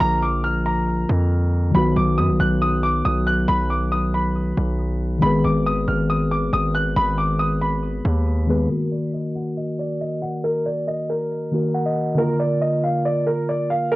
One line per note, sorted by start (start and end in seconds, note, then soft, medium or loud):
0.00 1.05 A#1 loud
0.00 1.68 D3 medium
0.00 1.69 F3 medium
0.00 1.70 A#3 medium
0.00 1.71 F4 medium
0.00 1.72 A#4 medium
0.00 0.21 A#5 loud
0.22 0.43 D6 medium
0.44 0.64 F6 medium
0.66 1.71 A#5 medium
1.09 1.72 F2 loud
1.71 1.95 B1 loud
1.71 5.16 D#3 medium
1.71 5.17 F#3 medium
1.71 5.18 B3 medium
1.75 5.19 F#4 medium
1.75 5.20 B4 medium
1.75 1.95 B5 medium
1.96 2.20 B1 loud
1.96 2.17 D6 medium
2.18 2.30 F#2 loud
2.18 2.38 D#6 medium
2.29 2.39 B1 loud
2.40 3.02 B1 loud
2.40 2.60 F#6 medium
2.62 2.82 D#6 medium
2.83 3.04 D6 medium
3.05 3.47 B1 loud
3.05 3.25 D#6 medium
3.27 3.47 F#6 medium
3.48 4.53 B1 loud
3.48 3.69 B5 loud
3.70 3.91 D6 medium
3.92 4.12 D#6 medium
4.14 5.19 B5 medium
4.57 5.20 B1 loud
5.18 5.43 G#1 loud
5.18 8.43 D#3 medium
5.18 8.44 G#3 medium
5.18 8.44 B3 medium
5.18 5.43 B5 loud
5.24 8.45 G#4 medium
5.24 8.46 B4 medium
5.44 5.86 G#1 loud
5.44 5.65 D6 medium
5.66 5.87 D#6 medium
5.88 6.50 G#1 loud
5.88 6.08 F6 medium
6.10 6.30 D#6 medium
6.31 6.52 D6 medium
6.53 6.95 G#1 loud
6.53 6.74 D#6 medium
6.75 6.95 F#6 medium
6.96 8.01 G#1 loud
6.96 7.17 B5 loud
7.18 7.38 D6 medium
7.39 7.60 D#6 medium
7.62 8.66 B5 medium
8.05 8.68 D#2 loud
8.47 8.65 D#3 medium
8.47 8.70 G#3 medium
8.47 8.70 B3 medium
8.47 8.71 G#4 medium
8.47 8.71 B4 medium
8.66 11.47 D#3 medium
8.66 11.48 A#3 medium
8.70 11.49 F#4 medium
8.70 8.91 A#4 loud
8.70 11.51 A#4 medium
8.92 9.12 D5 medium
9.14 9.34 D#5 medium
9.35 9.56 F#5 medium
9.57 9.78 D#5 medium
9.79 9.99 D5 medium
10.01 10.21 D#5 medium
10.22 10.43 F#5 medium
10.44 10.64 A#4 loud
10.66 10.86 D5 medium
10.87 11.08 D#5 medium
11.09 12.14 A#4 medium
11.51 12.17 D#3 soft
11.51 12.16 A#3 soft
11.51 12.19 F#4 soft
11.51 12.19 A#4 medium
11.74 11.85 F#5 medium
11.86 12.16 D#5 medium
12.14 13.96 D3 medium
12.14 13.96 A#3 medium
12.14 12.38 A#4 medium
12.19 13.96 F4 medium
12.19 13.96 A#4 medium
12.39 12.60 D5 medium
12.61 12.82 D#5 medium
12.84 13.04 F5 medium
13.05 13.26 D5 medium
13.27 13.47 A#4 medium
13.49 13.69 D5 medium
13.70 13.91 F5 medium
13.92 13.96 A#4 loud